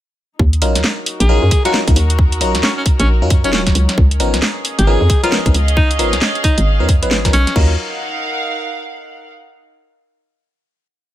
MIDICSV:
0, 0, Header, 1, 6, 480
1, 0, Start_track
1, 0, Key_signature, -6, "minor"
1, 0, Tempo, 447761
1, 423, Time_signature, 4, 2, 24, 8
1, 11943, End_track
2, 0, Start_track
2, 0, Title_t, "String section"
2, 0, Program_c, 0, 48
2, 422, Note_on_c, 0, 63, 72
2, 902, Note_on_c, 0, 70, 93
2, 1027, Note_on_c, 0, 66, 85
2, 4261, Note_on_c, 0, 61, 77
2, 4264, Note_off_c, 0, 66, 0
2, 4698, Note_on_c, 0, 68, 87
2, 4890, Note_on_c, 0, 75, 80
2, 4956, Note_on_c, 0, 77, 74
2, 5194, Note_off_c, 0, 63, 0
2, 5819, Note_off_c, 0, 70, 0
2, 8102, Note_off_c, 0, 68, 0
2, 8102, Note_off_c, 0, 75, 0
2, 8102, Note_off_c, 0, 77, 0
2, 8103, Note_off_c, 0, 61, 0
2, 8104, Note_on_c, 0, 63, 75
2, 8190, Note_on_c, 0, 70, 73
2, 8271, Note_on_c, 0, 77, 80
2, 8329, Note_on_c, 0, 78, 74
2, 9979, Note_off_c, 0, 70, 0
2, 9981, Note_off_c, 0, 63, 0
2, 9981, Note_off_c, 0, 77, 0
2, 9982, Note_off_c, 0, 78, 0
2, 11943, End_track
3, 0, Start_track
3, 0, Title_t, "Alto saxophone"
3, 0, Program_c, 1, 65
3, 1294, Note_on_c, 1, 68, 90
3, 1743, Note_off_c, 1, 68, 0
3, 1773, Note_on_c, 1, 66, 90
3, 1864, Note_off_c, 1, 66, 0
3, 2822, Note_on_c, 1, 61, 81
3, 2917, Note_off_c, 1, 61, 0
3, 2972, Note_on_c, 1, 61, 74
3, 3031, Note_off_c, 1, 61, 0
3, 3213, Note_on_c, 1, 61, 89
3, 3304, Note_off_c, 1, 61, 0
3, 3694, Note_on_c, 1, 61, 86
3, 3752, Note_off_c, 1, 61, 0
3, 3785, Note_on_c, 1, 61, 77
3, 3879, Note_off_c, 1, 61, 0
3, 5130, Note_on_c, 1, 68, 90
3, 5581, Note_off_c, 1, 68, 0
3, 5611, Note_on_c, 1, 65, 93
3, 5703, Note_off_c, 1, 65, 0
3, 6183, Note_on_c, 1, 63, 87
3, 6331, Note_off_c, 1, 63, 0
3, 6900, Note_on_c, 1, 63, 92
3, 7049, Note_off_c, 1, 63, 0
3, 7862, Note_on_c, 1, 61, 95
3, 8103, Note_off_c, 1, 61, 0
3, 11943, End_track
4, 0, Start_track
4, 0, Title_t, "FM electric piano"
4, 0, Program_c, 2, 5
4, 662, Note_on_c, 2, 63, 77
4, 663, Note_on_c, 2, 61, 75
4, 663, Note_on_c, 2, 70, 92
4, 664, Note_on_c, 2, 54, 82
4, 664, Note_on_c, 2, 65, 75
4, 857, Note_off_c, 2, 54, 0
4, 857, Note_off_c, 2, 61, 0
4, 857, Note_off_c, 2, 63, 0
4, 857, Note_off_c, 2, 65, 0
4, 857, Note_off_c, 2, 70, 0
4, 1383, Note_on_c, 2, 54, 86
4, 1383, Note_on_c, 2, 61, 78
4, 1383, Note_on_c, 2, 70, 98
4, 1384, Note_on_c, 2, 63, 80
4, 1384, Note_on_c, 2, 65, 78
4, 1521, Note_off_c, 2, 61, 0
4, 1522, Note_off_c, 2, 54, 0
4, 1522, Note_off_c, 2, 63, 0
4, 1522, Note_off_c, 2, 65, 0
4, 1522, Note_off_c, 2, 70, 0
4, 1768, Note_on_c, 2, 61, 89
4, 1769, Note_on_c, 2, 54, 93
4, 1769, Note_on_c, 2, 65, 85
4, 1769, Note_on_c, 2, 70, 104
4, 1770, Note_on_c, 2, 63, 91
4, 1935, Note_off_c, 2, 61, 0
4, 1936, Note_off_c, 2, 54, 0
4, 1936, Note_off_c, 2, 63, 0
4, 1936, Note_off_c, 2, 65, 0
4, 1936, Note_off_c, 2, 70, 0
4, 2008, Note_on_c, 2, 54, 71
4, 2008, Note_on_c, 2, 65, 63
4, 2009, Note_on_c, 2, 61, 62
4, 2009, Note_on_c, 2, 63, 65
4, 2009, Note_on_c, 2, 70, 80
4, 2096, Note_off_c, 2, 54, 0
4, 2096, Note_off_c, 2, 61, 0
4, 2096, Note_off_c, 2, 63, 0
4, 2096, Note_off_c, 2, 65, 0
4, 2096, Note_off_c, 2, 70, 0
4, 2581, Note_on_c, 2, 54, 85
4, 2581, Note_on_c, 2, 61, 72
4, 2581, Note_on_c, 2, 63, 74
4, 2581, Note_on_c, 2, 65, 76
4, 2582, Note_on_c, 2, 70, 93
4, 2721, Note_off_c, 2, 54, 0
4, 2721, Note_off_c, 2, 61, 0
4, 2721, Note_off_c, 2, 63, 0
4, 2721, Note_off_c, 2, 65, 0
4, 2721, Note_off_c, 2, 70, 0
4, 3452, Note_on_c, 2, 54, 74
4, 3452, Note_on_c, 2, 61, 67
4, 3452, Note_on_c, 2, 63, 66
4, 3453, Note_on_c, 2, 65, 65
4, 3453, Note_on_c, 2, 70, 83
4, 3538, Note_off_c, 2, 54, 0
4, 3538, Note_off_c, 2, 61, 0
4, 3538, Note_off_c, 2, 63, 0
4, 3538, Note_off_c, 2, 65, 0
4, 3538, Note_off_c, 2, 70, 0
4, 3690, Note_on_c, 2, 65, 70
4, 3690, Note_on_c, 2, 73, 82
4, 3691, Note_on_c, 2, 54, 78
4, 3691, Note_on_c, 2, 61, 72
4, 3691, Note_on_c, 2, 63, 70
4, 4252, Note_off_c, 2, 54, 0
4, 4252, Note_off_c, 2, 61, 0
4, 4252, Note_off_c, 2, 63, 0
4, 4252, Note_off_c, 2, 65, 0
4, 4252, Note_off_c, 2, 73, 0
4, 4502, Note_on_c, 2, 63, 77
4, 4502, Note_on_c, 2, 70, 96
4, 4503, Note_on_c, 2, 53, 81
4, 4503, Note_on_c, 2, 59, 80
4, 4503, Note_on_c, 2, 61, 76
4, 4697, Note_off_c, 2, 53, 0
4, 4697, Note_off_c, 2, 59, 0
4, 4697, Note_off_c, 2, 61, 0
4, 4697, Note_off_c, 2, 63, 0
4, 4697, Note_off_c, 2, 70, 0
4, 5223, Note_on_c, 2, 53, 87
4, 5223, Note_on_c, 2, 70, 98
4, 5224, Note_on_c, 2, 59, 83
4, 5224, Note_on_c, 2, 61, 85
4, 5224, Note_on_c, 2, 63, 83
4, 5362, Note_off_c, 2, 53, 0
4, 5362, Note_off_c, 2, 59, 0
4, 5362, Note_off_c, 2, 61, 0
4, 5362, Note_off_c, 2, 63, 0
4, 5362, Note_off_c, 2, 70, 0
4, 5612, Note_on_c, 2, 53, 98
4, 5612, Note_on_c, 2, 59, 87
4, 5612, Note_on_c, 2, 61, 90
4, 5612, Note_on_c, 2, 63, 90
4, 5612, Note_on_c, 2, 70, 110
4, 5777, Note_off_c, 2, 53, 0
4, 5777, Note_off_c, 2, 61, 0
4, 5777, Note_off_c, 2, 63, 0
4, 5777, Note_off_c, 2, 70, 0
4, 5778, Note_off_c, 2, 59, 0
4, 5851, Note_on_c, 2, 53, 70
4, 5851, Note_on_c, 2, 61, 64
4, 5851, Note_on_c, 2, 63, 68
4, 5851, Note_on_c, 2, 70, 76
4, 5852, Note_on_c, 2, 59, 64
4, 5937, Note_off_c, 2, 53, 0
4, 5937, Note_off_c, 2, 61, 0
4, 5937, Note_off_c, 2, 63, 0
4, 5937, Note_off_c, 2, 70, 0
4, 5938, Note_off_c, 2, 59, 0
4, 6423, Note_on_c, 2, 53, 87
4, 6423, Note_on_c, 2, 61, 80
4, 6423, Note_on_c, 2, 63, 76
4, 6423, Note_on_c, 2, 70, 94
4, 6424, Note_on_c, 2, 59, 77
4, 6562, Note_off_c, 2, 53, 0
4, 6562, Note_off_c, 2, 59, 0
4, 6562, Note_off_c, 2, 61, 0
4, 6562, Note_off_c, 2, 63, 0
4, 6562, Note_off_c, 2, 70, 0
4, 7291, Note_on_c, 2, 59, 66
4, 7291, Note_on_c, 2, 61, 69
4, 7291, Note_on_c, 2, 63, 69
4, 7291, Note_on_c, 2, 70, 83
4, 7292, Note_on_c, 2, 53, 79
4, 7377, Note_off_c, 2, 59, 0
4, 7377, Note_off_c, 2, 61, 0
4, 7377, Note_off_c, 2, 63, 0
4, 7377, Note_off_c, 2, 70, 0
4, 7378, Note_off_c, 2, 53, 0
4, 7530, Note_on_c, 2, 61, 70
4, 7531, Note_on_c, 2, 53, 77
4, 7531, Note_on_c, 2, 59, 70
4, 7531, Note_on_c, 2, 63, 68
4, 7531, Note_on_c, 2, 71, 87
4, 7696, Note_off_c, 2, 61, 0
4, 7697, Note_off_c, 2, 53, 0
4, 7697, Note_off_c, 2, 59, 0
4, 7697, Note_off_c, 2, 63, 0
4, 7697, Note_off_c, 2, 71, 0
4, 7771, Note_on_c, 2, 59, 68
4, 7771, Note_on_c, 2, 61, 70
4, 7771, Note_on_c, 2, 63, 69
4, 7771, Note_on_c, 2, 70, 80
4, 7772, Note_on_c, 2, 53, 73
4, 7857, Note_off_c, 2, 59, 0
4, 7857, Note_off_c, 2, 61, 0
4, 7857, Note_off_c, 2, 70, 0
4, 7858, Note_off_c, 2, 53, 0
4, 7858, Note_off_c, 2, 63, 0
4, 8102, Note_on_c, 2, 63, 80
4, 8103, Note_on_c, 2, 54, 89
4, 8103, Note_on_c, 2, 61, 78
4, 8103, Note_on_c, 2, 65, 76
4, 8103, Note_on_c, 2, 70, 98
4, 8292, Note_off_c, 2, 54, 0
4, 8292, Note_off_c, 2, 61, 0
4, 8292, Note_off_c, 2, 63, 0
4, 8292, Note_off_c, 2, 65, 0
4, 8292, Note_off_c, 2, 70, 0
4, 11943, End_track
5, 0, Start_track
5, 0, Title_t, "FM bass"
5, 0, Program_c, 3, 39
5, 422, Note_on_c, 3, 39, 95
5, 661, Note_on_c, 3, 34, 99
5, 677, Note_off_c, 3, 39, 0
5, 808, Note_on_c, 3, 39, 85
5, 824, Note_off_c, 3, 34, 0
5, 890, Note_off_c, 3, 39, 0
5, 1289, Note_on_c, 3, 34, 105
5, 1493, Note_off_c, 3, 34, 0
5, 1529, Note_on_c, 3, 42, 83
5, 1611, Note_off_c, 3, 42, 0
5, 2011, Note_on_c, 3, 37, 97
5, 2091, Note_off_c, 3, 37, 0
5, 2103, Note_on_c, 3, 39, 93
5, 2582, Note_on_c, 3, 34, 97
5, 2598, Note_off_c, 3, 39, 0
5, 2730, Note_on_c, 3, 39, 82
5, 2746, Note_off_c, 3, 34, 0
5, 2811, Note_off_c, 3, 39, 0
5, 3212, Note_on_c, 3, 34, 108
5, 3451, Note_on_c, 3, 42, 84
5, 3467, Note_off_c, 3, 34, 0
5, 3691, Note_on_c, 3, 27, 91
5, 3708, Note_off_c, 3, 42, 0
5, 4005, Note_off_c, 3, 27, 0
5, 4022, Note_on_c, 3, 37, 87
5, 4152, Note_off_c, 3, 37, 0
5, 4263, Note_on_c, 3, 37, 102
5, 4502, Note_on_c, 3, 32, 93
5, 4518, Note_off_c, 3, 37, 0
5, 4650, Note_on_c, 3, 37, 83
5, 4666, Note_off_c, 3, 32, 0
5, 4731, Note_off_c, 3, 37, 0
5, 5131, Note_on_c, 3, 32, 105
5, 5334, Note_off_c, 3, 32, 0
5, 5370, Note_on_c, 3, 41, 86
5, 5451, Note_off_c, 3, 41, 0
5, 5850, Note_on_c, 3, 35, 94
5, 5931, Note_off_c, 3, 35, 0
5, 5943, Note_on_c, 3, 37, 94
5, 6424, Note_on_c, 3, 32, 101
5, 6440, Note_off_c, 3, 37, 0
5, 6571, Note_on_c, 3, 37, 87
5, 6587, Note_off_c, 3, 32, 0
5, 6652, Note_off_c, 3, 37, 0
5, 7053, Note_on_c, 3, 32, 102
5, 7292, Note_on_c, 3, 41, 87
5, 7308, Note_off_c, 3, 32, 0
5, 7531, Note_on_c, 3, 32, 95
5, 7548, Note_off_c, 3, 41, 0
5, 7845, Note_off_c, 3, 32, 0
5, 7865, Note_on_c, 3, 35, 82
5, 7993, Note_off_c, 3, 35, 0
5, 8103, Note_on_c, 3, 39, 95
5, 8326, Note_off_c, 3, 39, 0
5, 11943, End_track
6, 0, Start_track
6, 0, Title_t, "Drums"
6, 423, Note_on_c, 9, 36, 108
6, 530, Note_off_c, 9, 36, 0
6, 570, Note_on_c, 9, 42, 49
6, 661, Note_on_c, 9, 46, 108
6, 677, Note_off_c, 9, 42, 0
6, 769, Note_off_c, 9, 46, 0
6, 809, Note_on_c, 9, 40, 64
6, 809, Note_on_c, 9, 42, 62
6, 900, Note_on_c, 9, 38, 122
6, 916, Note_off_c, 9, 40, 0
6, 916, Note_off_c, 9, 42, 0
6, 1007, Note_off_c, 9, 38, 0
6, 1140, Note_on_c, 9, 46, 108
6, 1247, Note_off_c, 9, 46, 0
6, 1290, Note_on_c, 9, 42, 66
6, 1397, Note_off_c, 9, 42, 0
6, 1621, Note_on_c, 9, 46, 107
6, 1623, Note_on_c, 9, 36, 97
6, 1728, Note_off_c, 9, 46, 0
6, 1730, Note_off_c, 9, 36, 0
6, 1771, Note_on_c, 9, 40, 31
6, 1771, Note_on_c, 9, 42, 61
6, 1863, Note_on_c, 9, 38, 117
6, 1878, Note_off_c, 9, 40, 0
6, 1878, Note_off_c, 9, 42, 0
6, 1970, Note_off_c, 9, 38, 0
6, 2011, Note_on_c, 9, 36, 102
6, 2011, Note_on_c, 9, 42, 54
6, 2103, Note_on_c, 9, 46, 105
6, 2118, Note_off_c, 9, 36, 0
6, 2118, Note_off_c, 9, 42, 0
6, 2210, Note_off_c, 9, 46, 0
6, 2251, Note_on_c, 9, 42, 66
6, 2343, Note_on_c, 9, 36, 119
6, 2358, Note_off_c, 9, 42, 0
6, 2450, Note_off_c, 9, 36, 0
6, 2491, Note_on_c, 9, 42, 51
6, 2582, Note_on_c, 9, 46, 108
6, 2598, Note_off_c, 9, 42, 0
6, 2689, Note_off_c, 9, 46, 0
6, 2730, Note_on_c, 9, 40, 70
6, 2730, Note_on_c, 9, 42, 61
6, 2823, Note_on_c, 9, 38, 127
6, 2838, Note_off_c, 9, 40, 0
6, 2838, Note_off_c, 9, 42, 0
6, 2930, Note_off_c, 9, 38, 0
6, 3062, Note_on_c, 9, 46, 108
6, 3063, Note_on_c, 9, 36, 110
6, 3170, Note_off_c, 9, 36, 0
6, 3170, Note_off_c, 9, 46, 0
6, 3211, Note_on_c, 9, 42, 66
6, 3318, Note_off_c, 9, 42, 0
6, 3542, Note_on_c, 9, 46, 103
6, 3543, Note_on_c, 9, 36, 109
6, 3649, Note_off_c, 9, 46, 0
6, 3650, Note_off_c, 9, 36, 0
6, 3691, Note_on_c, 9, 42, 60
6, 3783, Note_on_c, 9, 38, 120
6, 3798, Note_off_c, 9, 42, 0
6, 3890, Note_off_c, 9, 38, 0
6, 3929, Note_on_c, 9, 40, 70
6, 3929, Note_on_c, 9, 42, 52
6, 3931, Note_on_c, 9, 36, 63
6, 4022, Note_on_c, 9, 46, 103
6, 4037, Note_off_c, 9, 40, 0
6, 4037, Note_off_c, 9, 42, 0
6, 4038, Note_off_c, 9, 36, 0
6, 4129, Note_off_c, 9, 46, 0
6, 4169, Note_on_c, 9, 40, 69
6, 4169, Note_on_c, 9, 42, 61
6, 4263, Note_on_c, 9, 36, 116
6, 4276, Note_off_c, 9, 40, 0
6, 4276, Note_off_c, 9, 42, 0
6, 4370, Note_off_c, 9, 36, 0
6, 4409, Note_on_c, 9, 42, 51
6, 4501, Note_on_c, 9, 46, 98
6, 4516, Note_off_c, 9, 42, 0
6, 4608, Note_off_c, 9, 46, 0
6, 4650, Note_on_c, 9, 40, 67
6, 4650, Note_on_c, 9, 42, 61
6, 4741, Note_on_c, 9, 38, 127
6, 4757, Note_off_c, 9, 40, 0
6, 4757, Note_off_c, 9, 42, 0
6, 4848, Note_off_c, 9, 38, 0
6, 4982, Note_on_c, 9, 46, 109
6, 5089, Note_off_c, 9, 46, 0
6, 5131, Note_on_c, 9, 42, 63
6, 5238, Note_off_c, 9, 42, 0
6, 5463, Note_on_c, 9, 36, 108
6, 5464, Note_on_c, 9, 46, 95
6, 5571, Note_off_c, 9, 36, 0
6, 5571, Note_off_c, 9, 46, 0
6, 5612, Note_on_c, 9, 40, 31
6, 5612, Note_on_c, 9, 42, 59
6, 5704, Note_on_c, 9, 38, 127
6, 5720, Note_off_c, 9, 40, 0
6, 5720, Note_off_c, 9, 42, 0
6, 5811, Note_off_c, 9, 38, 0
6, 5851, Note_on_c, 9, 36, 105
6, 5853, Note_on_c, 9, 42, 51
6, 5944, Note_on_c, 9, 46, 102
6, 5958, Note_off_c, 9, 36, 0
6, 5960, Note_off_c, 9, 42, 0
6, 6051, Note_off_c, 9, 46, 0
6, 6092, Note_on_c, 9, 42, 62
6, 6183, Note_on_c, 9, 36, 118
6, 6199, Note_off_c, 9, 42, 0
6, 6290, Note_off_c, 9, 36, 0
6, 6332, Note_on_c, 9, 42, 51
6, 6423, Note_on_c, 9, 46, 98
6, 6440, Note_off_c, 9, 42, 0
6, 6530, Note_off_c, 9, 46, 0
6, 6571, Note_on_c, 9, 40, 64
6, 6571, Note_on_c, 9, 42, 64
6, 6663, Note_on_c, 9, 38, 127
6, 6678, Note_off_c, 9, 40, 0
6, 6678, Note_off_c, 9, 42, 0
6, 6770, Note_off_c, 9, 38, 0
6, 6811, Note_on_c, 9, 42, 36
6, 6903, Note_on_c, 9, 36, 107
6, 6904, Note_on_c, 9, 46, 104
6, 6918, Note_off_c, 9, 42, 0
6, 7010, Note_off_c, 9, 36, 0
6, 7011, Note_off_c, 9, 46, 0
6, 7051, Note_on_c, 9, 42, 64
6, 7158, Note_off_c, 9, 42, 0
6, 7382, Note_on_c, 9, 36, 106
6, 7383, Note_on_c, 9, 46, 96
6, 7490, Note_off_c, 9, 36, 0
6, 7490, Note_off_c, 9, 46, 0
6, 7532, Note_on_c, 9, 42, 64
6, 7623, Note_on_c, 9, 38, 122
6, 7639, Note_off_c, 9, 42, 0
6, 7730, Note_off_c, 9, 38, 0
6, 7771, Note_on_c, 9, 36, 62
6, 7772, Note_on_c, 9, 40, 67
6, 7772, Note_on_c, 9, 42, 54
6, 7861, Note_on_c, 9, 46, 97
6, 7878, Note_off_c, 9, 36, 0
6, 7879, Note_off_c, 9, 40, 0
6, 7879, Note_off_c, 9, 42, 0
6, 7968, Note_off_c, 9, 46, 0
6, 8010, Note_on_c, 9, 40, 66
6, 8010, Note_on_c, 9, 42, 63
6, 8101, Note_on_c, 9, 49, 91
6, 8103, Note_on_c, 9, 36, 114
6, 8117, Note_off_c, 9, 40, 0
6, 8117, Note_off_c, 9, 42, 0
6, 8208, Note_off_c, 9, 49, 0
6, 8210, Note_off_c, 9, 36, 0
6, 11943, End_track
0, 0, End_of_file